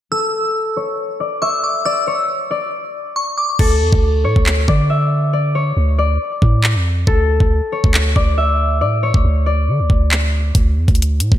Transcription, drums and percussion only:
3.59 kick, crash
3.93 kick
4.36 kick
4.46 clap
4.68 kick
6.42 kick
6.64 clap
7.07 kick
7.40 kick
7.84 kick
7.94 clap
8.16 kick
9.14 kick
9.90 kick
10.11 clap
10.55 kick, closed hi-hat
10.88 kick, closed hi-hat
10.95 closed hi-hat
11.02 closed hi-hat
11.20 closed hi-hat
11.32 kick

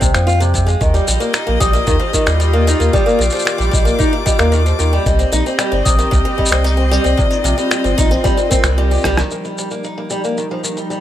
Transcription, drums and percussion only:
0.02 kick, shaker
0.15 finger snap, shaker
0.28 shaker
0.41 shaker
0.55 kick, shaker
0.68 shaker
0.81 kick, shaker
0.94 shaker
1.07 shaker
1.21 shaker
1.34 finger snap, shaker
1.61 kick, shaker
1.74 shaker
1.87 kick, shaker
2.14 kick, shaker
2.27 finger snap, shaker
2.41 shaker
2.68 shaker
2.81 shaker
2.94 kick, shaker
3.08 shaker
3.21 shaker
3.30 shaker
3.35 shaker
3.39 shaker
3.47 finger snap, shaker
3.61 shaker
3.74 kick, shaker
3.87 shaker
4.00 kick, shaker
4.27 kick, shaker
4.39 finger snap, shaker
4.53 shaker
4.66 shaker
4.79 shaker
5.06 kick, shaker
5.19 shaker
5.32 shaker
5.46 shaker
5.59 finger snap, shaker
5.86 kick, shaker
5.99 shaker
6.12 kick, shaker
6.39 kick
6.46 shaker
6.52 finger snap, shaker
6.66 shaker
6.93 shaker
7.05 shaker
7.19 kick, shaker
7.32 shaker
7.45 shaker
7.58 shaker
7.71 finger snap, shaker
7.85 shaker
7.98 kick, shaker
8.12 shaker
8.25 kick, shaker
8.38 shaker
8.51 kick, shaker
8.64 finger snap, shaker
8.91 shaker
8.94 shaker
8.97 shaker
9.01 cross-stick, shaker
9.05 kick, shaker
9.11 shaker
9.14 cross-stick, shaker
9.18 shaker
9.31 shaker
9.45 shaker
9.58 shaker
9.71 shaker
9.84 shaker
10.10 shaker
10.24 shaker
10.37 shaker
10.64 shaker
10.77 shaker
10.91 shaker

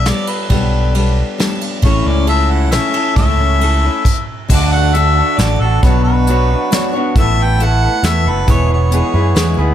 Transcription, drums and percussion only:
0.05 snare, ride
0.27 ride
0.50 kick, ride
0.95 ride
1.39 snare, ride
1.61 ride
1.82 kick, ride
2.27 ride
2.72 snare, ride
2.94 ride
3.16 kick, ride
3.61 ride
4.05 kick, crash
4.50 kick, crash
4.95 closed hi-hat
5.39 snare, closed hi-hat
5.83 kick, closed hi-hat
6.27 closed hi-hat
6.72 snare, closed hi-hat
7.16 kick, closed hi-hat
7.60 closed hi-hat
8.04 snare, closed hi-hat
8.48 kick, closed hi-hat
8.92 closed hi-hat
9.36 snare, closed hi-hat

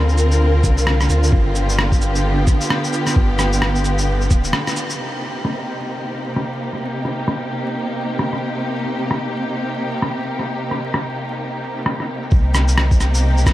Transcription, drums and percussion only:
0.09 shaker
0.18 cabasa
0.32 shaker
0.64 kick, cabasa
0.78 shaker
0.87 cross-stick
1.01 cross-stick, shaker
1.10 cabasa
1.23 shaker
1.32 kick
1.55 cabasa
1.69 shaker
1.79 cross-stick
1.92 kick, shaker
2.02 cabasa
2.15 shaker
2.47 kick, cabasa
2.61 shaker
2.70 cross-stick
2.84 shaker
2.93 cabasa
3.07 cross-stick, shaker
3.16 kick
3.39 cross-stick, cabasa
3.53 shaker
3.62 cross-stick
3.75 shaker
3.85 cabasa
3.98 shaker
4.21 shaker
4.30 kick, cabasa
4.44 shaker
4.53 cross-stick
4.67 cross-stick, shaker
4.76 cabasa
4.90 shaker
5.22 cabasa
5.36 shaker
5.45 cross-stick
5.59 shaker
5.68 cabasa
5.82 shaker
6.14 cabasa
6.27 shaker
6.36 cross-stick
6.50 shaker
6.59 cabasa
6.73 cross-stick, shaker
7.05 cross-stick, cabasa
7.19 shaker
7.28 cross-stick
7.41 shaker
7.51 cabasa
7.64 shaker
7.96 cabasa
8.10 shaker
8.19 cross-stick
8.33 cross-stick, shaker
8.42 cabasa
8.56 shaker
8.88 cabasa
9.02 shaker
9.11 cross-stick
9.25 shaker
9.34 cabasa
9.48 shaker
9.80 cabasa
9.93 shaker
10.02 cross-stick
10.16 shaker
10.25 cabasa
10.39 cross-stick, shaker
10.71 cross-stick, cabasa
10.85 shaker
10.94 cross-stick
11.08 shaker
11.17 cabasa
11.31 shaker
11.63 cabasa
11.77 shaker
11.86 cross-stick
12.00 cross-stick, shaker
12.09 cabasa
12.23 shaker
12.32 kick
12.55 cross-stick, cabasa
12.68 shaker
12.78 cross-stick
12.91 kick, shaker
13.01 cross-stick, cabasa
13.14 shaker
13.37 shaker
13.46 kick, cross-stick, cabasa

